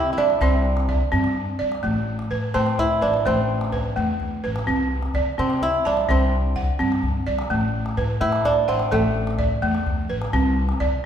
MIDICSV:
0, 0, Header, 1, 5, 480
1, 0, Start_track
1, 0, Tempo, 472441
1, 1864, Time_signature, 12, 3, 24, 8
1, 11231, End_track
2, 0, Start_track
2, 0, Title_t, "Balafon"
2, 0, Program_c, 0, 12
2, 0, Note_on_c, 0, 60, 82
2, 0, Note_on_c, 0, 84, 67
2, 179, Note_off_c, 0, 60, 0
2, 181, Note_on_c, 0, 74, 70
2, 421, Note_off_c, 0, 84, 0
2, 422, Note_on_c, 0, 60, 78
2, 423, Note_on_c, 0, 76, 75
2, 890, Note_off_c, 0, 74, 0
2, 902, Note_off_c, 0, 60, 0
2, 902, Note_on_c, 0, 74, 66
2, 1137, Note_on_c, 0, 60, 90
2, 1144, Note_off_c, 0, 76, 0
2, 1604, Note_off_c, 0, 74, 0
2, 1616, Note_on_c, 0, 74, 69
2, 1621, Note_off_c, 0, 60, 0
2, 1858, Note_on_c, 0, 57, 78
2, 2101, Note_off_c, 0, 74, 0
2, 2342, Note_off_c, 0, 57, 0
2, 2344, Note_on_c, 0, 71, 67
2, 2583, Note_on_c, 0, 81, 65
2, 2585, Note_on_c, 0, 57, 78
2, 3049, Note_off_c, 0, 71, 0
2, 3061, Note_on_c, 0, 71, 62
2, 3066, Note_off_c, 0, 57, 0
2, 3306, Note_off_c, 0, 81, 0
2, 3306, Note_on_c, 0, 57, 79
2, 3309, Note_on_c, 0, 72, 60
2, 3772, Note_off_c, 0, 71, 0
2, 3784, Note_on_c, 0, 71, 66
2, 3787, Note_off_c, 0, 57, 0
2, 4024, Note_on_c, 0, 57, 80
2, 4029, Note_off_c, 0, 72, 0
2, 4496, Note_off_c, 0, 71, 0
2, 4507, Note_off_c, 0, 57, 0
2, 4508, Note_on_c, 0, 71, 67
2, 4745, Note_on_c, 0, 60, 86
2, 4989, Note_off_c, 0, 71, 0
2, 5227, Note_off_c, 0, 60, 0
2, 5230, Note_on_c, 0, 74, 70
2, 5469, Note_on_c, 0, 60, 74
2, 5946, Note_on_c, 0, 81, 70
2, 5949, Note_off_c, 0, 60, 0
2, 5950, Note_off_c, 0, 74, 0
2, 6186, Note_on_c, 0, 60, 81
2, 6186, Note_on_c, 0, 72, 67
2, 6664, Note_on_c, 0, 78, 67
2, 6667, Note_off_c, 0, 60, 0
2, 6668, Note_off_c, 0, 81, 0
2, 6900, Note_on_c, 0, 60, 87
2, 6908, Note_off_c, 0, 72, 0
2, 7382, Note_on_c, 0, 74, 65
2, 7384, Note_off_c, 0, 60, 0
2, 7386, Note_off_c, 0, 78, 0
2, 7622, Note_on_c, 0, 57, 83
2, 7865, Note_off_c, 0, 74, 0
2, 8101, Note_on_c, 0, 71, 71
2, 8105, Note_off_c, 0, 57, 0
2, 8340, Note_on_c, 0, 57, 73
2, 8819, Note_on_c, 0, 78, 72
2, 8823, Note_off_c, 0, 57, 0
2, 8824, Note_off_c, 0, 71, 0
2, 9056, Note_on_c, 0, 57, 85
2, 9056, Note_on_c, 0, 69, 61
2, 9536, Note_on_c, 0, 74, 69
2, 9541, Note_off_c, 0, 57, 0
2, 9542, Note_off_c, 0, 78, 0
2, 9775, Note_on_c, 0, 57, 92
2, 9780, Note_off_c, 0, 69, 0
2, 10257, Note_on_c, 0, 71, 68
2, 10259, Note_off_c, 0, 57, 0
2, 10259, Note_off_c, 0, 74, 0
2, 10498, Note_on_c, 0, 60, 95
2, 10739, Note_off_c, 0, 71, 0
2, 10976, Note_on_c, 0, 74, 74
2, 10979, Note_off_c, 0, 60, 0
2, 11231, Note_off_c, 0, 74, 0
2, 11231, End_track
3, 0, Start_track
3, 0, Title_t, "Kora"
3, 0, Program_c, 1, 46
3, 0, Note_on_c, 1, 64, 97
3, 0, Note_on_c, 1, 67, 94
3, 125, Note_off_c, 1, 64, 0
3, 130, Note_on_c, 1, 64, 64
3, 182, Note_on_c, 1, 62, 79
3, 428, Note_on_c, 1, 60, 73
3, 1139, Note_off_c, 1, 67, 0
3, 1722, Note_off_c, 1, 64, 0
3, 1889, Note_off_c, 1, 62, 0
3, 2256, Note_off_c, 1, 60, 0
3, 2583, Note_on_c, 1, 60, 81
3, 2836, Note_on_c, 1, 64, 106
3, 3071, Note_on_c, 1, 62, 76
3, 3313, Note_off_c, 1, 60, 0
3, 3317, Note_on_c, 1, 60, 76
3, 4428, Note_off_c, 1, 64, 0
3, 4777, Note_off_c, 1, 62, 0
3, 5146, Note_off_c, 1, 60, 0
3, 5477, Note_on_c, 1, 60, 79
3, 5716, Note_on_c, 1, 64, 98
3, 5958, Note_on_c, 1, 62, 76
3, 6198, Note_off_c, 1, 60, 0
3, 6202, Note_on_c, 1, 60, 71
3, 7308, Note_off_c, 1, 64, 0
3, 7664, Note_off_c, 1, 62, 0
3, 8031, Note_off_c, 1, 60, 0
3, 8341, Note_on_c, 1, 64, 95
3, 8588, Note_on_c, 1, 62, 96
3, 8823, Note_on_c, 1, 60, 74
3, 9062, Note_on_c, 1, 57, 78
3, 9933, Note_off_c, 1, 64, 0
3, 10294, Note_off_c, 1, 62, 0
3, 10652, Note_off_c, 1, 60, 0
3, 11091, Note_off_c, 1, 57, 0
3, 11231, End_track
4, 0, Start_track
4, 0, Title_t, "Upright bass"
4, 0, Program_c, 2, 32
4, 174, Note_on_c, 2, 36, 91
4, 370, Note_off_c, 2, 36, 0
4, 413, Note_on_c, 2, 36, 108
4, 997, Note_off_c, 2, 36, 0
4, 1146, Note_on_c, 2, 43, 98
4, 1532, Note_off_c, 2, 43, 0
4, 1635, Note_on_c, 2, 36, 86
4, 1824, Note_off_c, 2, 36, 0
4, 1870, Note_on_c, 2, 33, 94
4, 2255, Note_off_c, 2, 33, 0
4, 2350, Note_on_c, 2, 45, 90
4, 2542, Note_off_c, 2, 45, 0
4, 2591, Note_on_c, 2, 45, 94
4, 2976, Note_off_c, 2, 45, 0
4, 3067, Note_on_c, 2, 33, 85
4, 3261, Note_off_c, 2, 33, 0
4, 3316, Note_on_c, 2, 33, 107
4, 3893, Note_off_c, 2, 33, 0
4, 4034, Note_on_c, 2, 40, 95
4, 4419, Note_off_c, 2, 40, 0
4, 4517, Note_on_c, 2, 33, 85
4, 4707, Note_off_c, 2, 33, 0
4, 4758, Note_on_c, 2, 36, 99
4, 5141, Note_off_c, 2, 36, 0
4, 5236, Note_on_c, 2, 48, 80
4, 5427, Note_off_c, 2, 48, 0
4, 5476, Note_on_c, 2, 48, 92
4, 5860, Note_off_c, 2, 48, 0
4, 5955, Note_on_c, 2, 36, 88
4, 6146, Note_off_c, 2, 36, 0
4, 6195, Note_on_c, 2, 36, 98
4, 6773, Note_off_c, 2, 36, 0
4, 6910, Note_on_c, 2, 43, 98
4, 7296, Note_off_c, 2, 43, 0
4, 7389, Note_on_c, 2, 36, 92
4, 7582, Note_off_c, 2, 36, 0
4, 7626, Note_on_c, 2, 33, 98
4, 8014, Note_off_c, 2, 33, 0
4, 8102, Note_on_c, 2, 45, 91
4, 8298, Note_off_c, 2, 45, 0
4, 8341, Note_on_c, 2, 45, 89
4, 8730, Note_off_c, 2, 45, 0
4, 8823, Note_on_c, 2, 33, 83
4, 9018, Note_off_c, 2, 33, 0
4, 9067, Note_on_c, 2, 33, 111
4, 9646, Note_off_c, 2, 33, 0
4, 9780, Note_on_c, 2, 40, 100
4, 10168, Note_off_c, 2, 40, 0
4, 10259, Note_on_c, 2, 33, 85
4, 10454, Note_off_c, 2, 33, 0
4, 10496, Note_on_c, 2, 36, 108
4, 10885, Note_off_c, 2, 36, 0
4, 10974, Note_on_c, 2, 48, 85
4, 11170, Note_off_c, 2, 48, 0
4, 11231, End_track
5, 0, Start_track
5, 0, Title_t, "Calabash"
5, 305, Note_on_c, 9, 38, 49
5, 407, Note_off_c, 9, 38, 0
5, 419, Note_on_c, 9, 36, 60
5, 520, Note_off_c, 9, 36, 0
5, 663, Note_on_c, 9, 38, 21
5, 765, Note_off_c, 9, 38, 0
5, 780, Note_on_c, 9, 38, 51
5, 882, Note_off_c, 9, 38, 0
5, 901, Note_on_c, 9, 36, 69
5, 1002, Note_off_c, 9, 36, 0
5, 1143, Note_on_c, 9, 38, 20
5, 1245, Note_off_c, 9, 38, 0
5, 1261, Note_on_c, 9, 38, 47
5, 1362, Note_off_c, 9, 38, 0
5, 1745, Note_on_c, 9, 38, 49
5, 1847, Note_off_c, 9, 38, 0
5, 1865, Note_on_c, 9, 36, 57
5, 1967, Note_off_c, 9, 36, 0
5, 1992, Note_on_c, 9, 38, 21
5, 2094, Note_off_c, 9, 38, 0
5, 2226, Note_on_c, 9, 38, 45
5, 2327, Note_off_c, 9, 38, 0
5, 2465, Note_on_c, 9, 38, 20
5, 2566, Note_off_c, 9, 38, 0
5, 2708, Note_on_c, 9, 38, 47
5, 2809, Note_off_c, 9, 38, 0
5, 2829, Note_on_c, 9, 36, 62
5, 2829, Note_on_c, 9, 38, 21
5, 2931, Note_off_c, 9, 36, 0
5, 2931, Note_off_c, 9, 38, 0
5, 2948, Note_on_c, 9, 38, 22
5, 3050, Note_off_c, 9, 38, 0
5, 3064, Note_on_c, 9, 38, 19
5, 3166, Note_off_c, 9, 38, 0
5, 3187, Note_on_c, 9, 38, 47
5, 3288, Note_off_c, 9, 38, 0
5, 3306, Note_on_c, 9, 36, 64
5, 3408, Note_off_c, 9, 36, 0
5, 3430, Note_on_c, 9, 38, 21
5, 3531, Note_off_c, 9, 38, 0
5, 3551, Note_on_c, 9, 38, 21
5, 3652, Note_off_c, 9, 38, 0
5, 3670, Note_on_c, 9, 38, 51
5, 3772, Note_off_c, 9, 38, 0
5, 3789, Note_on_c, 9, 36, 75
5, 3789, Note_on_c, 9, 38, 22
5, 3891, Note_off_c, 9, 36, 0
5, 3891, Note_off_c, 9, 38, 0
5, 4266, Note_on_c, 9, 36, 67
5, 4367, Note_off_c, 9, 36, 0
5, 4514, Note_on_c, 9, 38, 20
5, 4616, Note_off_c, 9, 38, 0
5, 4630, Note_on_c, 9, 38, 51
5, 4732, Note_off_c, 9, 38, 0
5, 4744, Note_on_c, 9, 36, 50
5, 4846, Note_off_c, 9, 36, 0
5, 5106, Note_on_c, 9, 38, 39
5, 5207, Note_off_c, 9, 38, 0
5, 5222, Note_on_c, 9, 36, 60
5, 5323, Note_off_c, 9, 36, 0
5, 5589, Note_on_c, 9, 38, 45
5, 5690, Note_off_c, 9, 38, 0
5, 5707, Note_on_c, 9, 36, 61
5, 5809, Note_off_c, 9, 36, 0
5, 6067, Note_on_c, 9, 38, 45
5, 6169, Note_off_c, 9, 38, 0
5, 6185, Note_on_c, 9, 36, 64
5, 6287, Note_off_c, 9, 36, 0
5, 6431, Note_on_c, 9, 38, 21
5, 6533, Note_off_c, 9, 38, 0
5, 6670, Note_on_c, 9, 36, 70
5, 6771, Note_off_c, 9, 36, 0
5, 6910, Note_on_c, 9, 38, 21
5, 7012, Note_off_c, 9, 38, 0
5, 7031, Note_on_c, 9, 38, 44
5, 7132, Note_off_c, 9, 38, 0
5, 7147, Note_on_c, 9, 36, 67
5, 7249, Note_off_c, 9, 36, 0
5, 7504, Note_on_c, 9, 38, 57
5, 7606, Note_off_c, 9, 38, 0
5, 7622, Note_on_c, 9, 36, 59
5, 7724, Note_off_c, 9, 36, 0
5, 7984, Note_on_c, 9, 38, 48
5, 8086, Note_off_c, 9, 38, 0
5, 8106, Note_on_c, 9, 36, 69
5, 8207, Note_off_c, 9, 36, 0
5, 8458, Note_on_c, 9, 38, 58
5, 8559, Note_off_c, 9, 38, 0
5, 8580, Note_on_c, 9, 36, 69
5, 8682, Note_off_c, 9, 36, 0
5, 8936, Note_on_c, 9, 38, 51
5, 9037, Note_off_c, 9, 38, 0
5, 9064, Note_on_c, 9, 36, 72
5, 9165, Note_off_c, 9, 36, 0
5, 9294, Note_on_c, 9, 38, 22
5, 9395, Note_off_c, 9, 38, 0
5, 9420, Note_on_c, 9, 38, 53
5, 9522, Note_off_c, 9, 38, 0
5, 9540, Note_on_c, 9, 36, 74
5, 9641, Note_off_c, 9, 36, 0
5, 9780, Note_on_c, 9, 38, 21
5, 9881, Note_off_c, 9, 38, 0
5, 9902, Note_on_c, 9, 38, 43
5, 10004, Note_off_c, 9, 38, 0
5, 10022, Note_on_c, 9, 36, 66
5, 10124, Note_off_c, 9, 36, 0
5, 10379, Note_on_c, 9, 38, 49
5, 10481, Note_off_c, 9, 38, 0
5, 10498, Note_on_c, 9, 36, 60
5, 10600, Note_off_c, 9, 36, 0
5, 10858, Note_on_c, 9, 38, 46
5, 10960, Note_off_c, 9, 38, 0
5, 10980, Note_on_c, 9, 36, 65
5, 11082, Note_off_c, 9, 36, 0
5, 11231, End_track
0, 0, End_of_file